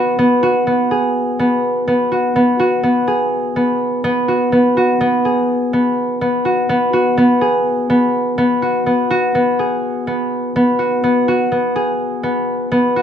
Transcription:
0.00 0.18 B3 medium
0.00 0.42 F#4 medium
0.00 0.91 G#4 medium
0.19 0.66 B3 medium
0.43 2.11 F#4 medium
0.67 1.39 B3 medium
0.91 3.07 G#4 medium
1.39 1.87 B3 medium
1.88 2.35 B3 medium
2.12 2.59 F#4 medium
2.36 2.83 B3 medium
2.60 4.28 F#4 medium
2.83 3.56 B3 medium
3.07 5.25 G#4 medium
3.56 4.04 B3 medium
4.04 4.52 B3 medium
4.28 4.76 F#4 medium
4.52 5.00 B3 medium
4.77 6.45 F#4 medium
5.01 5.73 B3 medium
5.25 7.41 G#4 medium
5.73 6.21 B3 medium
6.21 6.69 B3 medium
6.45 6.93 F#4 medium
6.69 7.17 B3 medium
6.93 8.62 F#4 medium
7.17 7.89 B3 medium
7.41 9.59 G#4 medium
7.90 8.37 B3 medium
8.38 8.86 B3 medium
8.62 9.10 F#4 medium
8.86 9.34 B3 medium
9.10 10.78 F#4 medium
9.35 10.07 B3 medium
9.59 11.75 G#4 medium
10.07 10.55 B3 medium
10.56 11.03 B3 medium
10.79 11.28 F#4 medium
11.04 11.51 B3 medium
11.28 12.96 F#4 medium
11.52 12.23 B3 medium
11.76 13.02 G#4 medium
12.23 12.71 B3 medium
12.72 13.02 B3 medium
12.96 13.02 F#4 medium

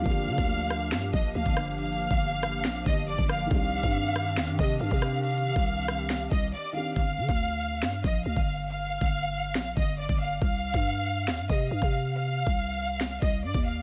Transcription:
0.00 3.45 F3 medium
0.00 3.47 D4 medium
0.00 3.47 G4 medium
0.05 0.29 G1 loud
0.05 3.48 F3 medium
0.05 3.46 A#3 medium
0.05 3.48 A#3 medium
0.05 3.48 D4 medium
0.05 1.10 F5 loud
0.05 1.10 F6 medium
0.05 kick loud
0.05 closed hi-hat medium
0.10 3.49 G4 medium
0.27 0.38 D3 loud
0.38 0.94 D2 loud
0.38 kick loud
0.38 closed hi-hat medium
0.70 cross-stick loud
0.70 closed hi-hat medium
0.92 1.13 G2 loud
0.92 snare loud
0.92 closed hi-hat medium
1.14 1.34 A#1 loud
1.14 1.30 D#5 medium
1.14 1.31 D#6 medium
1.14 kick loud
1.24 closed hi-hat medium
1.35 1.45 D2 loud
1.35 1.76 F5 medium
1.35 1.76 F6 medium
1.45 2.08 G1 loud
1.45 kick medium
1.45 closed hi-hat medium
1.57 cross-stick loud
1.57 closed hi-hat medium
1.64 closed hi-hat medium
1.71 closed hi-hat medium
1.78 2.82 F5 loud
1.78 2.83 F6 medium
1.78 closed hi-hat medium
1.86 closed hi-hat medium
1.93 closed hi-hat medium
2.11 2.66 G1 loud
2.11 kick loud
2.21 closed hi-hat loud
2.43 cross-stick loud
2.43 closed hi-hat medium
2.65 2.85 A#1 loud
2.65 snare loud
2.65 closed hi-hat medium
2.86 3.17 G1 loud
2.86 3.03 D#5 medium
2.86 3.04 D#6 medium
2.86 kick loud
2.97 closed hi-hat medium
3.08 3.25 D5 medium
3.08 3.25 D6 medium
3.08 closed hi-hat medium
3.18 3.50 G1 loud
3.18 kick medium
3.18 closed hi-hat medium
3.29 3.46 F5 medium
3.29 3.47 F6 medium
3.29 cross-stick loud
3.40 closed hi-hat medium
3.47 6.69 D#3 medium
3.47 6.70 C4 medium
3.51 3.82 C2 loud
3.51 6.93 D#3 medium
3.51 6.93 C4 medium
3.51 6.93 D4 medium
3.51 6.71 D4 medium
3.51 6.93 G4 medium
3.51 4.55 F5 loud
3.51 4.55 F6 medium
3.51 kick loud
3.51 closed hi-hat medium
3.55 6.73 G4 medium
3.83 4.39 G2 loud
3.83 kick loud
3.83 closed hi-hat medium
4.16 cross-stick loud
4.16 closed hi-hat medium
4.37 4.50 D#2 loud
4.37 snare loud
4.37 closed hi-hat medium
4.48 4.58 G2 loud
4.59 4.80 C3 loud
4.59 4.76 D#5 medium
4.59 4.76 D#6 medium
4.59 kick loud
4.70 closed hi-hat medium
4.81 4.91 G2 loud
4.81 5.21 F5 medium
4.81 5.21 F6 medium
4.91 5.53 C3 loud
4.91 kick medium
4.91 closed hi-hat medium
5.02 cross-stick loud
5.02 closed hi-hat medium
5.09 closed hi-hat medium
5.16 closed hi-hat medium
5.24 6.28 F5 loud
5.24 6.28 F6 medium
5.24 closed hi-hat medium
5.31 closed hi-hat medium
5.38 closed hi-hat medium
5.56 6.29 C2 loud
5.56 kick loud
5.67 closed hi-hat loud
5.88 cross-stick loud
5.88 closed hi-hat medium
6.10 snare loud
6.10 closed hi-hat medium
6.31 6.53 C2 loud
6.31 6.48 D#5 medium
6.31 6.49 D#6 medium
6.31 kick loud
6.42 closed hi-hat soft
6.48 closed hi-hat medium
6.53 6.70 D5 medium
6.53 6.70 D6 medium
6.72 6.95 D#3 soft
6.72 6.96 C4 soft
6.72 6.97 D4 soft
6.72 6.91 F5 medium
6.72 6.92 F6 medium
6.77 6.97 G4 medium
6.96 7.19 G1 loud
6.96 8.00 F5 loud
6.96 8.01 F6 medium
6.96 kick loud
7.18 7.28 D3 loud
7.29 7.84 D2 loud
7.29 kick loud
7.83 8.03 G2 loud
7.83 snare loud
8.04 8.25 A#1 loud
8.04 8.21 D#5 medium
8.04 8.21 D#6 medium
8.04 kick loud
8.26 8.36 D2 loud
8.26 8.66 F5 medium
8.26 8.67 F6 medium
8.37 8.99 G1 loud
8.37 kick medium
8.69 9.73 F5 loud
8.69 9.73 F6 medium
9.01 9.57 G1 loud
9.01 kick loud
9.55 9.76 A#1 loud
9.55 snare loud
9.77 10.08 G1 loud
9.77 9.94 D#5 medium
9.77 9.94 D#6 medium
9.77 kick loud
9.98 10.15 D5 medium
9.98 10.16 D6 medium
10.09 10.40 G1 loud
10.09 kick medium
10.20 10.37 F5 medium
10.20 10.37 F6 medium
10.42 10.73 C2 loud
10.42 11.46 F5 loud
10.42 11.46 F6 medium
10.42 kick loud
10.74 11.29 G2 loud
10.74 kick loud
11.28 11.40 D#2 loud
11.28 snare loud
11.39 11.49 G2 loud
11.49 11.70 C3 loud
11.49 11.66 D#5 medium
11.49 11.67 D#6 medium
11.49 kick loud
11.71 11.81 G2 loud
11.71 12.12 F5 medium
11.71 12.12 F6 medium
11.82 12.44 C3 loud
11.82 kick medium
12.14 13.18 F5 loud
12.14 13.19 F6 medium
12.47 13.19 C2 loud
12.47 kick loud
13.01 snare loud
13.22 13.45 C2 loud
13.22 13.39 D#5 medium
13.22 13.39 D#6 medium
13.22 kick loud
13.44 13.54 G2 loud
13.44 13.61 D5 medium
13.44 13.61 D6 medium
13.54 13.82 D#2 loud
13.54 kick medium
13.65 13.82 F5 medium
13.65 13.82 F6 medium

